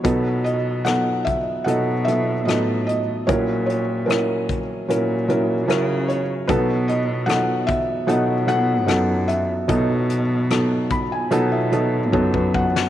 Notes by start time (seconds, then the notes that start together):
0.04 B1 B2 F#3 B3 D#4 F#4 A4 B4, kick, closed hi-hat
0.44 D#5, closed hi-hat
0.84 F#3 B3 D#4 A4 F#5, cross-stick, closed hi-hat
1.25 E5, kick, closed hi-hat
1.64 B2 F#3 B3 D#4 A4 D#5 F#5, closed hi-hat
2.05 F#3 B3 D#4 A4 E5, closed hi-hat
2.45 A2 F#3 B3 D#4 A4 D#5, cross-stick, closed hi-hat
2.87 D#5, closed hi-hat
3.27 A#1 A#2 F#3 C#4 E4 A#4 C#5, kick, closed hi-hat
3.66 C#5, closed hi-hat
4.06 F#3 C#4 E4 A#4, closed hi-hat
4.11 cross-stick
4.49 kick, closed hi-hat
4.89 A#2 F#3 C#4 E4 A#4, closed hi-hat
5.28 F#3 C#4 E4 A#4, closed hi-hat
5.68 C#3 F#3 C#4 E4 A#4, cross-stick, closed hi-hat
6.08 C#5, closed hi-hat
6.47 B1 B2 F#3 B3 D#4 F#4 A4 B4, kick, closed hi-hat
6.88 D#5, closed hi-hat
7.26 F#3 B3 D#4 A4 F#5, cross-stick, closed hi-hat
7.67 E5, kick, closed hi-hat
8.07 B2 F#3 B3 D#4 A4 D#5 F#5, closed hi-hat
8.47 F#3 B3 D#4 A4 F#5, closed hi-hat
8.87 F#2 F#3 B3 D#4 A4 F#5, cross-stick, closed hi-hat
9.28 E5, closed hi-hat
9.68 B1 B2 F#3 B3 D#4 A4 D#5, kick, closed hi-hat
10.10 closed hi-hat
10.50 F#3 B3 D#4 A4, cross-stick, closed hi-hat
10.90 B5, kick, closed hi-hat
11.12 G#5
11.31 B2 F#3 B3 D#4 A4 F#5, closed hi-hat
11.52 E5
11.72 F#3 B3 D#4 A4 D#5, closed hi-hat
12.12 F#2 F#3 B3 D#4 A4 C#5, kick
12.34 B4, kick
12.54 F#5, kick
12.76 snare